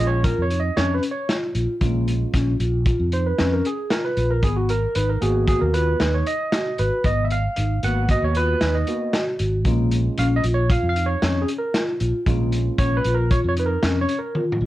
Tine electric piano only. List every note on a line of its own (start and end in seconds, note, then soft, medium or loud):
0.00 0.32 G#3 medium
0.00 0.33 C#4 soft
0.00 0.33 F4 medium
0.07 0.23 C#5 medium
0.24 0.42 A#4 medium
0.42 0.60 C#5 medium
0.59 0.77 D#5 medium
0.77 0.95 C#5 medium
0.94 1.02 B4 medium
1.11 1.36 C#5 medium
1.81 2.56 G#3 soft
1.81 2.56 C#4 soft
1.81 2.56 F4 medium
3.13 3.26 C5 medium
3.26 3.53 B4 medium
3.53 3.65 A#4 medium
3.66 3.92 G#4 medium
3.91 4.04 A#4 medium
4.05 4.31 B4 medium
4.31 4.44 A#4 medium
4.44 4.56 G#4 medium
4.57 4.70 F#4 medium
4.70 4.94 A#4 medium
4.96 5.09 B4 medium
5.10 5.21 A#4 medium
5.21 5.96 A#3 soft
5.21 5.96 B3 soft
5.21 5.96 F#4 medium
5.21 5.46 G#4 medium
5.49 5.62 G#4 medium
5.61 5.74 A#4 medium
5.74 6.14 B4 medium
6.14 6.26 C#5 medium
6.27 6.80 D#5 medium
6.79 7.06 B4 medium
7.06 7.25 D#5 medium
7.25 7.31 E5 medium
7.32 7.85 F5 medium
7.84 8.58 A#3 medium
7.84 8.58 B3 soft
7.84 8.58 F#4 medium
7.84 8.08 F#5 loud
8.11 8.23 D#5 loud
8.24 8.37 C#5 medium
8.37 8.76 B4 medium
8.75 9.23 D#5 medium
8.88 9.11 A#3 soft
8.88 9.11 B3 soft
8.88 9.11 F#4 medium
9.66 10.40 G#3 medium
9.66 10.41 C#4 soft
9.66 10.41 F4 medium
10.19 10.26 F5 loud
10.36 10.44 D#5 medium
10.54 10.70 C#5 medium
10.71 10.88 F5 medium
10.89 11.06 F5 medium
11.06 11.41 C#5 medium
11.42 11.49 G#4 medium
11.58 11.82 A#4 medium
12.27 13.01 G#3 medium
12.27 13.01 C#4 soft
12.27 13.02 F4 medium
12.79 12.97 C#5 medium
12.97 13.14 B4 medium
13.14 13.32 A#4 medium
13.31 13.39 C#5 medium
13.49 13.53 C#5 medium
13.60 13.66 B4 medium
13.66 13.98 A#4 medium
14.01 14.19 C#5 medium
14.19 14.43 A#4 medium